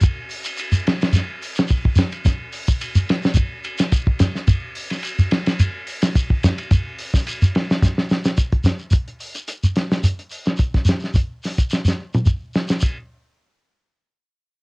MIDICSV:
0, 0, Header, 1, 3, 480
1, 0, Start_track
1, 0, Tempo, 555556
1, 1477, Time_signature, 4, 2, 24, 8
1, 12635, End_track
2, 0, Start_track
2, 0, Title_t, "Shekere"
2, 12, Note_on_c, 9, 82, 85
2, 98, Note_off_c, 9, 82, 0
2, 254, Note_on_c, 9, 82, 32
2, 340, Note_off_c, 9, 82, 0
2, 384, Note_on_c, 9, 82, 76
2, 470, Note_off_c, 9, 82, 0
2, 492, Note_on_c, 9, 82, 73
2, 579, Note_off_c, 9, 82, 0
2, 624, Note_on_c, 9, 82, 95
2, 711, Note_off_c, 9, 82, 0
2, 870, Note_on_c, 9, 82, 29
2, 956, Note_off_c, 9, 82, 0
2, 976, Note_on_c, 9, 82, 84
2, 1062, Note_off_c, 9, 82, 0
2, 1226, Note_on_c, 9, 82, 32
2, 1312, Note_off_c, 9, 82, 0
2, 1342, Note_on_c, 9, 82, 74
2, 1428, Note_off_c, 9, 82, 0
2, 1449, Note_on_c, 9, 82, 70
2, 1535, Note_off_c, 9, 82, 0
2, 1691, Note_on_c, 9, 82, 94
2, 1778, Note_off_c, 9, 82, 0
2, 1831, Note_on_c, 9, 82, 29
2, 1918, Note_off_c, 9, 82, 0
2, 1943, Note_on_c, 9, 82, 95
2, 2030, Note_off_c, 9, 82, 0
2, 2180, Note_on_c, 9, 82, 31
2, 2266, Note_off_c, 9, 82, 0
2, 2311, Note_on_c, 9, 82, 78
2, 2398, Note_off_c, 9, 82, 0
2, 2425, Note_on_c, 9, 82, 68
2, 2512, Note_off_c, 9, 82, 0
2, 2553, Note_on_c, 9, 82, 92
2, 2639, Note_off_c, 9, 82, 0
2, 2790, Note_on_c, 9, 82, 31
2, 2877, Note_off_c, 9, 82, 0
2, 2887, Note_on_c, 9, 82, 93
2, 2974, Note_off_c, 9, 82, 0
2, 3143, Note_on_c, 9, 82, 30
2, 3230, Note_off_c, 9, 82, 0
2, 3268, Note_on_c, 9, 82, 77
2, 3354, Note_off_c, 9, 82, 0
2, 3389, Note_on_c, 9, 82, 76
2, 3475, Note_off_c, 9, 82, 0
2, 3632, Note_on_c, 9, 82, 89
2, 3718, Note_off_c, 9, 82, 0
2, 3766, Note_on_c, 9, 82, 32
2, 3853, Note_off_c, 9, 82, 0
2, 3867, Note_on_c, 9, 82, 89
2, 3953, Note_off_c, 9, 82, 0
2, 4113, Note_on_c, 9, 82, 30
2, 4200, Note_off_c, 9, 82, 0
2, 4252, Note_on_c, 9, 82, 75
2, 4339, Note_off_c, 9, 82, 0
2, 4359, Note_on_c, 9, 82, 75
2, 4445, Note_off_c, 9, 82, 0
2, 4482, Note_on_c, 9, 82, 93
2, 4569, Note_off_c, 9, 82, 0
2, 4729, Note_on_c, 9, 82, 31
2, 4816, Note_off_c, 9, 82, 0
2, 4835, Note_on_c, 9, 82, 97
2, 4921, Note_off_c, 9, 82, 0
2, 5083, Note_on_c, 9, 82, 32
2, 5170, Note_off_c, 9, 82, 0
2, 5201, Note_on_c, 9, 82, 79
2, 5288, Note_off_c, 9, 82, 0
2, 5321, Note_on_c, 9, 82, 76
2, 5407, Note_off_c, 9, 82, 0
2, 5564, Note_on_c, 9, 82, 92
2, 5651, Note_off_c, 9, 82, 0
2, 5688, Note_on_c, 9, 82, 31
2, 5774, Note_off_c, 9, 82, 0
2, 5806, Note_on_c, 9, 82, 85
2, 5893, Note_off_c, 9, 82, 0
2, 6047, Note_on_c, 9, 82, 30
2, 6133, Note_off_c, 9, 82, 0
2, 6176, Note_on_c, 9, 82, 76
2, 6262, Note_off_c, 9, 82, 0
2, 6291, Note_on_c, 9, 82, 77
2, 6378, Note_off_c, 9, 82, 0
2, 6412, Note_on_c, 9, 82, 95
2, 6498, Note_off_c, 9, 82, 0
2, 6653, Note_on_c, 9, 82, 31
2, 6739, Note_off_c, 9, 82, 0
2, 6767, Note_on_c, 9, 82, 87
2, 6853, Note_off_c, 9, 82, 0
2, 6995, Note_on_c, 9, 82, 32
2, 7082, Note_off_c, 9, 82, 0
2, 7120, Note_on_c, 9, 82, 74
2, 7206, Note_off_c, 9, 82, 0
2, 7234, Note_on_c, 9, 82, 73
2, 7321, Note_off_c, 9, 82, 0
2, 7464, Note_on_c, 9, 82, 85
2, 7550, Note_off_c, 9, 82, 0
2, 7592, Note_on_c, 9, 82, 30
2, 7678, Note_off_c, 9, 82, 0
2, 7697, Note_on_c, 9, 82, 87
2, 7783, Note_off_c, 9, 82, 0
2, 7945, Note_on_c, 9, 82, 29
2, 8032, Note_off_c, 9, 82, 0
2, 8078, Note_on_c, 9, 82, 71
2, 8164, Note_off_c, 9, 82, 0
2, 8190, Note_on_c, 9, 82, 68
2, 8276, Note_off_c, 9, 82, 0
2, 8325, Note_on_c, 9, 82, 85
2, 8412, Note_off_c, 9, 82, 0
2, 8562, Note_on_c, 9, 82, 27
2, 8648, Note_off_c, 9, 82, 0
2, 8672, Note_on_c, 9, 82, 92
2, 8758, Note_off_c, 9, 82, 0
2, 8902, Note_on_c, 9, 82, 30
2, 8988, Note_off_c, 9, 82, 0
2, 9031, Note_on_c, 9, 82, 70
2, 9118, Note_off_c, 9, 82, 0
2, 9132, Note_on_c, 9, 82, 67
2, 9218, Note_off_c, 9, 82, 0
2, 9376, Note_on_c, 9, 82, 85
2, 9463, Note_off_c, 9, 82, 0
2, 9502, Note_on_c, 9, 82, 28
2, 9589, Note_off_c, 9, 82, 0
2, 9624, Note_on_c, 9, 82, 82
2, 9710, Note_off_c, 9, 82, 0
2, 9875, Note_on_c, 9, 82, 28
2, 9962, Note_off_c, 9, 82, 0
2, 10006, Note_on_c, 9, 82, 67
2, 10092, Note_off_c, 9, 82, 0
2, 10111, Note_on_c, 9, 82, 68
2, 10197, Note_off_c, 9, 82, 0
2, 10237, Note_on_c, 9, 82, 87
2, 10323, Note_off_c, 9, 82, 0
2, 10482, Note_on_c, 9, 82, 28
2, 10568, Note_off_c, 9, 82, 0
2, 10591, Note_on_c, 9, 82, 82
2, 10677, Note_off_c, 9, 82, 0
2, 10833, Note_on_c, 9, 82, 29
2, 10920, Note_off_c, 9, 82, 0
2, 10953, Note_on_c, 9, 82, 70
2, 11039, Note_off_c, 9, 82, 0
2, 11057, Note_on_c, 9, 82, 96
2, 11143, Note_off_c, 9, 82, 0
2, 12635, End_track
3, 0, Start_track
3, 0, Title_t, "Drums"
3, 30, Note_on_c, 9, 53, 60
3, 31, Note_on_c, 9, 36, 73
3, 117, Note_off_c, 9, 36, 0
3, 117, Note_off_c, 9, 53, 0
3, 267, Note_on_c, 9, 46, 68
3, 354, Note_off_c, 9, 46, 0
3, 396, Note_on_c, 9, 53, 58
3, 483, Note_off_c, 9, 53, 0
3, 515, Note_on_c, 9, 53, 65
3, 601, Note_off_c, 9, 53, 0
3, 752, Note_on_c, 9, 53, 59
3, 760, Note_on_c, 9, 38, 80
3, 838, Note_off_c, 9, 53, 0
3, 847, Note_off_c, 9, 38, 0
3, 882, Note_on_c, 9, 53, 52
3, 891, Note_on_c, 9, 38, 77
3, 968, Note_off_c, 9, 53, 0
3, 977, Note_off_c, 9, 38, 0
3, 994, Note_on_c, 9, 53, 58
3, 1003, Note_on_c, 9, 38, 32
3, 1080, Note_off_c, 9, 53, 0
3, 1089, Note_off_c, 9, 38, 0
3, 1232, Note_on_c, 9, 46, 64
3, 1319, Note_off_c, 9, 46, 0
3, 1366, Note_on_c, 9, 53, 53
3, 1374, Note_on_c, 9, 38, 77
3, 1452, Note_off_c, 9, 53, 0
3, 1461, Note_off_c, 9, 38, 0
3, 1471, Note_on_c, 9, 53, 53
3, 1473, Note_on_c, 9, 36, 85
3, 1558, Note_off_c, 9, 53, 0
3, 1560, Note_off_c, 9, 36, 0
3, 1599, Note_on_c, 9, 36, 73
3, 1686, Note_off_c, 9, 36, 0
3, 1707, Note_on_c, 9, 53, 53
3, 1716, Note_on_c, 9, 38, 75
3, 1794, Note_off_c, 9, 53, 0
3, 1802, Note_off_c, 9, 38, 0
3, 1833, Note_on_c, 9, 53, 47
3, 1920, Note_off_c, 9, 53, 0
3, 1948, Note_on_c, 9, 53, 56
3, 1951, Note_on_c, 9, 36, 76
3, 1957, Note_on_c, 9, 38, 31
3, 2035, Note_off_c, 9, 53, 0
3, 2037, Note_off_c, 9, 36, 0
3, 2043, Note_off_c, 9, 38, 0
3, 2182, Note_on_c, 9, 46, 72
3, 2269, Note_off_c, 9, 46, 0
3, 2318, Note_on_c, 9, 36, 69
3, 2405, Note_off_c, 9, 36, 0
3, 2429, Note_on_c, 9, 53, 59
3, 2516, Note_off_c, 9, 53, 0
3, 2671, Note_on_c, 9, 53, 54
3, 2679, Note_on_c, 9, 38, 76
3, 2757, Note_off_c, 9, 53, 0
3, 2766, Note_off_c, 9, 38, 0
3, 2808, Note_on_c, 9, 38, 76
3, 2894, Note_off_c, 9, 38, 0
3, 2908, Note_on_c, 9, 53, 58
3, 2911, Note_on_c, 9, 36, 70
3, 2995, Note_off_c, 9, 53, 0
3, 2997, Note_off_c, 9, 36, 0
3, 3148, Note_on_c, 9, 53, 58
3, 3234, Note_off_c, 9, 53, 0
3, 3274, Note_on_c, 9, 53, 54
3, 3283, Note_on_c, 9, 38, 72
3, 3361, Note_off_c, 9, 53, 0
3, 3369, Note_off_c, 9, 38, 0
3, 3385, Note_on_c, 9, 53, 55
3, 3389, Note_on_c, 9, 36, 90
3, 3472, Note_off_c, 9, 53, 0
3, 3476, Note_off_c, 9, 36, 0
3, 3516, Note_on_c, 9, 36, 73
3, 3602, Note_off_c, 9, 36, 0
3, 3620, Note_on_c, 9, 53, 57
3, 3629, Note_on_c, 9, 38, 75
3, 3707, Note_off_c, 9, 53, 0
3, 3715, Note_off_c, 9, 38, 0
3, 3762, Note_on_c, 9, 38, 29
3, 3849, Note_off_c, 9, 38, 0
3, 3867, Note_on_c, 9, 53, 60
3, 3870, Note_on_c, 9, 36, 79
3, 3953, Note_off_c, 9, 53, 0
3, 3957, Note_off_c, 9, 36, 0
3, 4108, Note_on_c, 9, 46, 66
3, 4194, Note_off_c, 9, 46, 0
3, 4237, Note_on_c, 9, 53, 61
3, 4245, Note_on_c, 9, 38, 29
3, 4323, Note_off_c, 9, 53, 0
3, 4332, Note_off_c, 9, 38, 0
3, 4345, Note_on_c, 9, 53, 60
3, 4432, Note_off_c, 9, 53, 0
3, 4589, Note_on_c, 9, 53, 60
3, 4597, Note_on_c, 9, 38, 77
3, 4675, Note_off_c, 9, 53, 0
3, 4684, Note_off_c, 9, 38, 0
3, 4719, Note_on_c, 9, 53, 55
3, 4727, Note_on_c, 9, 38, 72
3, 4805, Note_off_c, 9, 53, 0
3, 4814, Note_off_c, 9, 38, 0
3, 4836, Note_on_c, 9, 53, 60
3, 4922, Note_off_c, 9, 53, 0
3, 5071, Note_on_c, 9, 46, 63
3, 5157, Note_off_c, 9, 46, 0
3, 5199, Note_on_c, 9, 53, 53
3, 5207, Note_on_c, 9, 38, 80
3, 5285, Note_off_c, 9, 53, 0
3, 5294, Note_off_c, 9, 38, 0
3, 5317, Note_on_c, 9, 53, 49
3, 5318, Note_on_c, 9, 36, 92
3, 5403, Note_off_c, 9, 53, 0
3, 5404, Note_off_c, 9, 36, 0
3, 5445, Note_on_c, 9, 36, 78
3, 5531, Note_off_c, 9, 36, 0
3, 5557, Note_on_c, 9, 53, 54
3, 5566, Note_on_c, 9, 38, 78
3, 5644, Note_off_c, 9, 53, 0
3, 5652, Note_off_c, 9, 38, 0
3, 5686, Note_on_c, 9, 53, 51
3, 5773, Note_off_c, 9, 53, 0
3, 5795, Note_on_c, 9, 53, 56
3, 5798, Note_on_c, 9, 36, 78
3, 5882, Note_off_c, 9, 53, 0
3, 5885, Note_off_c, 9, 36, 0
3, 6035, Note_on_c, 9, 46, 65
3, 6122, Note_off_c, 9, 46, 0
3, 6168, Note_on_c, 9, 36, 74
3, 6177, Note_on_c, 9, 38, 33
3, 6254, Note_off_c, 9, 36, 0
3, 6264, Note_off_c, 9, 38, 0
3, 6279, Note_on_c, 9, 53, 57
3, 6365, Note_off_c, 9, 53, 0
3, 6522, Note_on_c, 9, 53, 53
3, 6530, Note_on_c, 9, 38, 75
3, 6608, Note_off_c, 9, 53, 0
3, 6617, Note_off_c, 9, 38, 0
3, 6660, Note_on_c, 9, 38, 77
3, 6747, Note_off_c, 9, 38, 0
3, 6759, Note_on_c, 9, 36, 74
3, 6765, Note_on_c, 9, 38, 56
3, 6846, Note_off_c, 9, 36, 0
3, 6851, Note_off_c, 9, 38, 0
3, 6894, Note_on_c, 9, 38, 59
3, 6981, Note_off_c, 9, 38, 0
3, 7009, Note_on_c, 9, 38, 79
3, 7095, Note_off_c, 9, 38, 0
3, 7132, Note_on_c, 9, 38, 79
3, 7218, Note_off_c, 9, 38, 0
3, 7234, Note_on_c, 9, 42, 69
3, 7238, Note_on_c, 9, 36, 82
3, 7321, Note_off_c, 9, 42, 0
3, 7325, Note_off_c, 9, 36, 0
3, 7363, Note_on_c, 9, 42, 33
3, 7365, Note_on_c, 9, 36, 75
3, 7449, Note_off_c, 9, 42, 0
3, 7451, Note_off_c, 9, 36, 0
3, 7472, Note_on_c, 9, 42, 50
3, 7480, Note_on_c, 9, 38, 69
3, 7558, Note_off_c, 9, 42, 0
3, 7567, Note_off_c, 9, 38, 0
3, 7710, Note_on_c, 9, 42, 71
3, 7716, Note_on_c, 9, 36, 76
3, 7796, Note_off_c, 9, 42, 0
3, 7802, Note_off_c, 9, 36, 0
3, 7842, Note_on_c, 9, 42, 34
3, 7928, Note_off_c, 9, 42, 0
3, 7953, Note_on_c, 9, 46, 65
3, 8039, Note_off_c, 9, 46, 0
3, 8079, Note_on_c, 9, 42, 34
3, 8165, Note_off_c, 9, 42, 0
3, 8190, Note_on_c, 9, 42, 72
3, 8276, Note_off_c, 9, 42, 0
3, 8430, Note_on_c, 9, 42, 52
3, 8439, Note_on_c, 9, 38, 70
3, 8517, Note_off_c, 9, 42, 0
3, 8525, Note_off_c, 9, 38, 0
3, 8568, Note_on_c, 9, 38, 75
3, 8655, Note_off_c, 9, 38, 0
3, 8678, Note_on_c, 9, 42, 75
3, 8764, Note_off_c, 9, 42, 0
3, 8806, Note_on_c, 9, 42, 33
3, 8892, Note_off_c, 9, 42, 0
3, 8913, Note_on_c, 9, 46, 62
3, 9000, Note_off_c, 9, 46, 0
3, 9039, Note_on_c, 9, 42, 34
3, 9048, Note_on_c, 9, 38, 68
3, 9125, Note_off_c, 9, 42, 0
3, 9134, Note_off_c, 9, 38, 0
3, 9148, Note_on_c, 9, 42, 64
3, 9154, Note_on_c, 9, 36, 84
3, 9235, Note_off_c, 9, 42, 0
3, 9240, Note_off_c, 9, 36, 0
3, 9282, Note_on_c, 9, 42, 32
3, 9283, Note_on_c, 9, 36, 73
3, 9291, Note_on_c, 9, 38, 26
3, 9369, Note_off_c, 9, 42, 0
3, 9370, Note_off_c, 9, 36, 0
3, 9377, Note_off_c, 9, 38, 0
3, 9401, Note_on_c, 9, 42, 53
3, 9410, Note_on_c, 9, 38, 72
3, 9487, Note_off_c, 9, 42, 0
3, 9496, Note_off_c, 9, 38, 0
3, 9539, Note_on_c, 9, 38, 26
3, 9625, Note_off_c, 9, 38, 0
3, 9641, Note_on_c, 9, 36, 69
3, 9644, Note_on_c, 9, 42, 65
3, 9727, Note_off_c, 9, 36, 0
3, 9730, Note_off_c, 9, 42, 0
3, 9887, Note_on_c, 9, 46, 67
3, 9896, Note_on_c, 9, 38, 28
3, 9974, Note_off_c, 9, 46, 0
3, 9982, Note_off_c, 9, 38, 0
3, 10008, Note_on_c, 9, 36, 65
3, 10013, Note_on_c, 9, 42, 31
3, 10094, Note_off_c, 9, 36, 0
3, 10100, Note_off_c, 9, 42, 0
3, 10135, Note_on_c, 9, 38, 53
3, 10222, Note_off_c, 9, 38, 0
3, 10264, Note_on_c, 9, 38, 49
3, 10350, Note_off_c, 9, 38, 0
3, 10493, Note_on_c, 9, 47, 56
3, 10579, Note_off_c, 9, 47, 0
3, 10602, Note_on_c, 9, 36, 70
3, 10688, Note_off_c, 9, 36, 0
3, 10848, Note_on_c, 9, 38, 77
3, 10934, Note_off_c, 9, 38, 0
3, 10974, Note_on_c, 9, 38, 74
3, 11060, Note_off_c, 9, 38, 0
3, 11079, Note_on_c, 9, 53, 63
3, 11081, Note_on_c, 9, 36, 73
3, 11166, Note_off_c, 9, 53, 0
3, 11168, Note_off_c, 9, 36, 0
3, 12635, End_track
0, 0, End_of_file